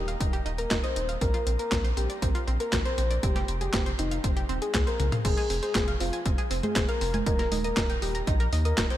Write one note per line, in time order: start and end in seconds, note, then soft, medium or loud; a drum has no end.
0.00 0.16 D#1 medium
0.00 0.15 G4 medium
0.08 0.17 F5 medium
0.08 closed hi-hat soft
0.20 0.41 D#1 medium
0.20 0.29 D#4 medium
0.20 kick loud
0.20 closed hi-hat medium
0.33 0.42 G4 loud
0.33 closed hi-hat soft
0.46 0.66 D#1 medium
0.46 0.58 D#4 loud
0.46 closed hi-hat soft
0.58 0.70 A#4 medium
0.58 0.79 A#4 medium
0.58 closed hi-hat soft
0.71 0.81 D#1 medium
0.71 0.76 D#4 medium
0.71 kick loud
0.71 snare loud
0.71 clap medium
0.71 closed hi-hat medium
0.83 1.14 C5 medium
0.83 0.96 D#5 medium
0.83 closed hi-hat soft
0.96 1.17 D#1 medium
0.96 1.05 D#4 medium
0.96 closed hi-hat medium
1.09 1.14 F5 medium
1.09 closed hi-hat soft
1.21 1.32 A#1 medium
1.21 1.30 C4 medium
1.21 1.52 A#4 loud
1.21 kick loud
1.21 closed hi-hat medium
1.34 1.43 F4 loud
1.34 closed hi-hat soft
1.47 1.57 A#1 loud
1.47 1.55 C4 medium
1.47 closed hi-hat medium
1.59 1.89 A#4 loud
1.59 1.71 A#4 medium
1.59 closed hi-hat soft
1.72 1.92 A#1 loud
1.72 1.77 C4 medium
1.72 kick loud
1.72 snare loud
1.72 clap loud
1.72 closed hi-hat medium
1.84 1.96 C5 medium
1.84 closed hi-hat soft
1.97 2.07 A#1 medium
1.97 2.06 C4 medium
1.97 2.17 G4 medium
1.97 closed hi-hat medium
2.10 2.18 D5 medium
2.10 closed hi-hat soft
2.22 2.33 A#1 medium
2.22 2.31 C4 medium
2.22 kick loud
2.22 closed hi-hat medium
2.35 2.43 F4 loud
2.35 closed hi-hat soft
2.47 2.58 A#1 medium
2.47 2.59 C4 loud
2.47 closed hi-hat soft
2.60 2.72 A#4 medium
2.60 2.80 A#4 loud
2.60 closed hi-hat soft
2.73 2.83 A#1 medium
2.73 2.78 C4 medium
2.73 kick loud
2.73 snare loud
2.73 clap loud
2.73 closed hi-hat medium
2.85 2.97 C5 medium
2.85 3.16 C5 medium
2.85 closed hi-hat soft
2.98 3.19 A#1 loud
2.98 3.07 C4 medium
2.98 closed hi-hat medium
3.10 3.16 D5 medium
3.10 closed hi-hat soft
3.23 3.44 F1 medium
3.23 3.32 C4 medium
3.23 3.53 G4 loud
3.23 kick loud
3.23 closed hi-hat medium
3.36 3.44 G4 loud
3.36 snare soft
3.36 closed hi-hat soft
3.48 3.69 F1 medium
3.48 3.57 C4 medium
3.48 closed hi-hat medium
3.61 3.91 G4 loud
3.61 3.73 G#4 medium
3.61 closed hi-hat soft
3.74 3.94 F1 medium
3.74 3.79 C4 medium
3.74 kick loud
3.74 snare loud
3.74 clap loud
3.74 closed hi-hat loud
3.86 3.98 C5 medium
3.86 closed hi-hat soft
3.99 4.19 F1 medium
3.99 4.07 C4 medium
3.99 4.19 D#4 medium
3.99 closed hi-hat medium
4.11 4.20 F5 medium
4.11 closed hi-hat soft
4.24 4.45 F1 medium
4.24 4.33 C4 medium
4.24 kick loud
4.24 closed hi-hat loud
4.36 4.45 G4 loud
4.36 closed hi-hat soft
4.49 4.59 D#1 loud
4.49 4.61 C4 loud
4.49 closed hi-hat soft
4.62 4.82 G#4 medium
4.62 4.74 G#4 medium
4.62 closed hi-hat soft
4.74 4.85 C2 medium
4.74 4.80 C4 medium
4.74 kick loud
4.74 snare loud
4.74 clap loud
4.74 closed hi-hat medium
4.87 5.17 A#4 medium
4.87 4.99 C5 medium
4.87 closed hi-hat soft
5.00 5.10 C2 loud
5.00 5.08 C4 medium
5.00 closed hi-hat medium
5.00 high tom medium
5.12 5.17 F5 medium
5.12 closed hi-hat soft
5.12 mid tom medium
5.25 5.35 F1 loud
5.25 5.33 C4 medium
5.25 5.55 G#4 loud
5.25 kick loud
5.25 closed hi-hat medium
5.25 crash loud
5.37 5.46 G#4 loud
5.37 closed hi-hat soft
5.50 5.60 F1 loud
5.50 5.59 C4 medium
5.50 open hi-hat loud
5.63 5.93 G#4 loud
5.63 5.75 C5 medium
5.63 closed hi-hat soft
5.75 5.96 F1 loud
5.75 5.80 C4 medium
5.75 kick loud
5.75 snare loud
5.75 clap loud
5.75 closed hi-hat loud
5.88 6.00 F5 medium
5.88 closed hi-hat soft
6.00 6.11 F1 medium
6.00 6.09 C4 medium
6.00 6.21 F4 medium
6.00 open hi-hat loud
6.13 6.22 G#5 medium
6.13 closed hi-hat soft
6.26 6.36 F1 medium
6.26 6.34 C4 medium
6.26 kick loud
6.26 closed hi-hat loud
6.38 6.47 G#4 loud
6.38 closed hi-hat soft
6.51 6.61 F1 loud
6.51 6.63 C4 loud
6.51 open hi-hat loud
6.63 6.84 G#4 medium
6.63 6.75 C5 medium
6.63 closed hi-hat soft
6.63 high conga medium
6.76 6.86 F1 medium
6.76 6.81 C4 medium
6.76 kick loud
6.76 snare loud
6.76 clap loud
6.76 closed hi-hat loud
6.89 7.19 A#4 loud
6.89 7.01 F5 medium
6.89 closed hi-hat soft
7.01 7.22 F1 loud
7.01 7.10 C4 medium
7.01 open hi-hat medium
7.14 7.19 G#5 medium
7.14 closed hi-hat soft
7.14 high conga medium
7.26 7.47 D#1 medium
7.26 7.35 D#4 medium
7.26 7.57 A#4 loud
7.26 kick loud
7.26 closed hi-hat medium
7.39 7.48 A#4 loud
7.39 snare soft
7.39 closed hi-hat soft
7.52 7.72 D#1 medium
7.52 7.60 D#4 medium
7.52 open hi-hat loud
7.52 high conga medium
7.64 7.95 A#4 loud
7.64 7.76 D#5 medium
7.64 closed hi-hat soft
7.77 7.98 D#1 medium
7.77 7.82 D#4 medium
7.77 kick loud
7.77 snare loud
7.77 clap loud
7.77 closed hi-hat medium
7.90 8.02 G5 medium
7.90 closed hi-hat soft
8.02 8.23 D#1 medium
8.02 8.11 D#4 medium
8.02 8.22 G4 medium
8.02 open hi-hat medium
8.15 8.23 A#5 medium
8.15 closed hi-hat soft
8.27 8.48 A#1 medium
8.27 8.36 D#4 medium
8.27 kick loud
8.27 closed hi-hat loud
8.40 8.49 A#4 loud
8.40 closed hi-hat soft
8.53 8.73 D#2 loud
8.53 8.65 D#4 loud
8.53 open hi-hat loud
8.65 8.85 A#4 medium
8.65 8.77 D#5 medium
8.65 closed hi-hat soft
8.78 8.88 D#1 medium
8.78 8.83 D#4 medium
8.78 kick loud
8.78 snare loud
8.78 clap loud
8.78 closed hi-hat medium
8.90 8.97 C5 loud
8.90 8.97 G5 medium
8.90 closed hi-hat soft